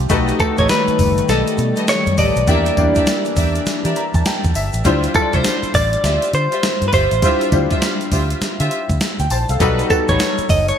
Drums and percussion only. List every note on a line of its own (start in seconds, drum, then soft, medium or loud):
0.10 kick loud
0.10 closed hi-hat medium
0.10 tambourine medium
0.10 shaker medium
0.28 closed hi-hat medium
0.28 shaker medium
0.40 kick medium
0.40 closed hi-hat medium
0.40 tambourine medium
0.58 kick medium
0.58 closed hi-hat medium
0.58 shaker medium
0.69 snare loud
0.69 closed hi-hat medium
0.69 tambourine loud
0.69 shaker medium
0.87 closed hi-hat soft
0.87 shaker soft
0.99 kick loud
0.99 open hi-hat medium
0.99 tambourine medium
0.99 shaker medium
1.17 closed hi-hat medium
1.17 shaker soft
1.29 snare medium
1.29 closed hi-hat medium
1.29 tambourine medium
1.29 shaker medium
1.47 closed hi-hat medium
1.47 shaker medium
1.58 closed hi-hat medium
1.58 shaker medium
1.76 closed hi-hat medium
1.76 shaker medium
1.88 snare loud
1.88 closed hi-hat medium
1.88 tambourine medium
1.88 shaker medium
2.06 closed hi-hat soft
2.06 shaker soft
2.17 kick loud
2.17 open hi-hat medium
2.17 tambourine medium
2.17 shaker soft
2.36 closed hi-hat medium
2.36 shaker medium
2.47 kick loud
2.47 closed hi-hat medium
2.47 tambourine medium
2.47 shaker medium
2.66 closed hi-hat medium
2.66 shaker medium
2.77 kick medium
2.77 closed hi-hat medium
2.77 tambourine medium
2.95 kick medium
2.95 closed hi-hat medium
2.95 shaker medium
3.06 snare loud
3.06 closed hi-hat medium
3.06 tambourine loud
3.06 shaker medium
3.25 closed hi-hat medium
3.25 shaker soft
3.36 kick loud
3.36 open hi-hat medium
3.36 tambourine medium
3.36 shaker medium
3.55 closed hi-hat medium
3.55 shaker soft
3.66 snare medium
3.66 closed hi-hat medium
3.66 tambourine medium
3.66 shaker medium
3.85 closed hi-hat medium
3.85 shaker medium
3.96 closed hi-hat medium
3.96 shaker medium
4.14 kick medium
4.14 closed hi-hat medium
4.14 shaker medium
4.25 snare loud
4.25 closed hi-hat medium
4.25 tambourine medium
4.25 shaker medium
4.44 kick medium
4.44 closed hi-hat soft
4.44 shaker soft
4.55 open hi-hat medium
4.55 tambourine medium
4.55 shaker soft
4.73 closed hi-hat medium
4.73 shaker medium
4.84 kick loud
4.84 closed hi-hat medium
4.84 tambourine medium
4.84 shaker medium
5.03 closed hi-hat medium
5.03 shaker medium
5.14 kick medium
5.14 closed hi-hat medium
5.14 tambourine medium
5.33 kick medium
5.33 closed hi-hat medium
5.33 shaker medium
5.44 snare loud
5.44 closed hi-hat medium
5.44 tambourine loud
5.44 shaker medium
5.63 closed hi-hat medium
5.63 shaker soft
5.74 kick loud
5.74 open hi-hat medium
5.74 tambourine medium
5.74 shaker medium
5.93 closed hi-hat medium
5.93 shaker soft
6.04 snare medium
6.04 closed hi-hat medium
6.04 tambourine medium
6.04 shaker medium
6.22 closed hi-hat medium
6.22 shaker medium
6.33 closed hi-hat medium
6.33 shaker soft
6.52 closed hi-hat medium
6.52 shaker medium
6.63 snare loud
6.63 closed hi-hat medium
6.63 tambourine medium
6.63 shaker medium
6.82 closed hi-hat medium
6.82 shaker soft
6.93 kick loud
6.93 open hi-hat medium
6.93 tambourine medium
6.93 shaker medium
7.11 closed hi-hat medium
7.11 shaker medium
7.22 kick loud
7.22 closed hi-hat medium
7.22 tambourine medium
7.22 shaker medium
7.41 closed hi-hat medium
7.41 shaker medium
7.52 kick loud
7.52 closed hi-hat medium
7.52 tambourine medium
7.71 kick medium
7.71 closed hi-hat medium
7.71 shaker medium
7.82 snare loud
7.82 closed hi-hat medium
7.82 tambourine loud
7.82 shaker medium
8.01 closed hi-hat soft
8.01 shaker soft
8.12 kick loud
8.12 open hi-hat medium
8.12 tambourine medium
8.12 shaker medium
8.30 closed hi-hat medium
8.30 shaker soft
8.42 snare medium
8.42 closed hi-hat medium
8.42 tambourine medium
8.42 shaker medium
8.60 closed hi-hat medium
8.60 shaker medium
8.71 closed hi-hat medium
8.71 shaker soft
8.89 kick loud
8.89 closed hi-hat medium
8.89 shaker medium
9.01 snare loud
9.01 closed hi-hat medium
9.01 tambourine medium
9.01 shaker medium
9.19 closed hi-hat soft
9.19 shaker soft
9.30 open hi-hat medium
9.30 tambourine medium
9.30 shaker medium
9.49 closed hi-hat medium
9.49 shaker medium
9.60 kick loud
9.60 closed hi-hat medium
9.60 tambourine medium
9.60 shaker medium
9.79 closed hi-hat medium
9.79 shaker medium
9.90 kick medium
9.90 closed hi-hat medium
9.90 tambourine medium
10.08 kick medium
10.08 closed hi-hat medium
10.08 shaker medium
10.19 snare loud
10.19 closed hi-hat medium
10.19 tambourine loud
10.19 shaker medium
10.38 closed hi-hat soft
10.38 shaker soft
10.49 kick loud
10.49 open hi-hat medium
10.49 tambourine medium
10.49 shaker medium
10.68 closed hi-hat medium
10.68 shaker medium